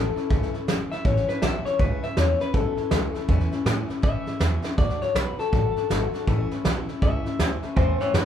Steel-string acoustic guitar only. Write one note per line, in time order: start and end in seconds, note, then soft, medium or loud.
0.00 0.16 E3 medium
0.00 0.17 A3 medium
0.00 0.16 C#4 medium
0.00 0.15 E4 medium
0.16 0.29 A3 medium
0.16 0.29 C#4 medium
0.16 0.30 E4 medium
0.30 0.54 A2 medium
0.30 0.54 E3 medium
0.30 0.54 A3 medium
0.30 0.54 C#4 medium
0.30 0.53 E4 medium
0.54 0.67 A3 soft
0.54 0.68 C#4 soft
0.54 0.68 E4 medium
0.68 0.91 E3 medium
0.68 0.91 A3 medium
0.68 0.91 C#4 medium
0.68 0.90 E4 medium
0.92 1.05 A3 soft
0.92 1.06 C#4 medium
0.92 1.05 E4 medium
1.06 1.29 A2 medium
1.06 1.29 E3 medium
1.06 1.29 A3 medium
1.06 1.28 C#4 medium
1.06 1.27 E4 medium
1.28 1.41 A3 soft
1.28 1.42 C#4 soft
1.28 1.42 E4 medium
1.42 1.66 E3 medium
1.42 1.66 A3 medium
1.42 1.66 C#4 medium
1.42 1.65 E4 medium
1.66 1.80 A3 soft
1.66 1.80 C#4 soft
1.66 1.80 E4 medium
1.80 2.03 A2 medium
1.80 2.04 E3 medium
1.80 2.04 A3 medium
1.80 2.03 C#4 medium
1.80 2.02 E4 medium
2.03 2.16 A3 soft
2.03 2.16 C#4 soft
2.03 2.17 E4 medium
2.16 2.40 E3 medium
2.16 2.40 A3 medium
2.16 2.40 C#4 medium
2.16 2.39 E4 medium
2.40 2.53 A3 soft
2.40 2.53 C#4 medium
2.40 2.53 E4 medium
2.53 2.77 A2 medium
2.53 2.78 E3 medium
2.53 2.78 A3 medium
2.53 2.77 C#4 medium
2.53 2.76 E4 medium
2.77 2.90 A3 soft
2.77 2.91 C#4 medium
2.77 2.91 E4 medium
2.91 3.15 E3 medium
2.91 3.15 A3 medium
2.91 3.14 C#4 medium
2.91 3.13 E4 medium
3.14 3.28 A3 medium
3.14 3.28 C#4 medium
3.14 3.28 E4 medium
3.28 3.52 A2 medium
3.28 3.52 E3 medium
3.28 3.52 A3 medium
3.28 3.51 C#4 loud
3.28 3.50 E4 medium
3.51 3.65 A3 medium
3.51 3.65 C#4 medium
3.51 3.66 E4 medium
3.65 3.89 E3 medium
3.65 3.89 A3 medium
3.65 3.88 C#4 medium
3.65 3.87 E4 medium
3.88 4.02 A3 soft
3.88 4.02 C#4 medium
3.88 4.02 E4 medium
4.02 4.26 A2 medium
4.02 4.27 E3 medium
4.02 4.27 A3 medium
4.02 4.26 C#4 medium
4.02 4.25 E4 medium
4.26 4.39 A3 soft
4.26 4.39 C#4 soft
4.26 4.40 E4 medium
4.39 4.64 E3 medium
4.39 4.63 A3 medium
4.39 4.63 C#4 medium
4.39 4.62 E4 medium
4.63 4.77 A3 soft
4.63 4.78 C#4 medium
4.63 4.77 E4 medium
4.77 5.01 D3 medium
4.77 5.02 A3 medium
4.77 5.01 D4 medium
4.77 5.00 F#4 medium
5.02 5.14 A3 soft
5.02 5.15 D4 soft
5.02 5.15 F#4 medium
5.15 5.39 D3 medium
5.15 5.39 A3 medium
5.15 5.38 D4 medium
5.15 5.38 F#4 medium
5.39 5.51 A3 soft
5.39 5.52 D4 medium
5.39 5.52 F#4 medium
5.52 5.76 D3 medium
5.52 5.76 A3 medium
5.52 5.76 D4 medium
5.52 5.75 F#4 medium
5.76 5.89 A3 soft
5.76 5.90 D4 medium
5.76 5.90 F#4 medium
5.90 6.14 D3 medium
5.90 6.14 A3 medium
5.90 6.14 D4 medium
5.90 6.13 F#4 medium
6.14 6.26 A3 medium
6.14 6.28 D4 medium
6.14 6.27 F#4 medium
6.27 6.51 A2 medium
6.27 6.51 E3 medium
6.27 6.51 A3 medium
6.27 6.51 C#4 medium
6.27 6.50 E4 loud
6.51 6.64 A3 soft
6.51 6.64 C#4 medium
6.51 6.65 E4 medium
6.64 6.88 E3 medium
6.64 6.89 A3 medium
6.64 6.88 C#4 medium
6.64 6.87 E4 medium
6.88 7.02 A3 medium
6.88 7.02 C#4 medium
6.88 7.02 E4 medium
7.02 7.26 A2 medium
7.02 7.26 E3 medium
7.02 7.25 A3 medium
7.02 7.25 C#4 medium
7.02 7.24 E4 medium
7.25 7.39 A3 soft
7.25 7.39 C#4 soft
7.25 7.39 E4 medium
7.39 7.63 E3 medium
7.39 7.63 A3 medium
7.39 7.62 C#4 medium
7.39 7.61 E4 medium
7.63 7.76 A3 medium
7.63 7.76 C#4 medium
7.63 7.76 E4 medium
7.76 8.00 A2 medium
7.76 8.00 E3 medium
7.76 8.00 A3 medium
7.76 8.00 C#4 medium
7.76 7.98 E4 medium
8.00 8.13 A3 soft
8.00 8.13 C#4 soft
8.00 8.14 E4 medium
8.14 8.25 E3 medium
8.14 8.25 A3 medium
8.14 8.25 C#4 medium
8.14 8.25 E4 medium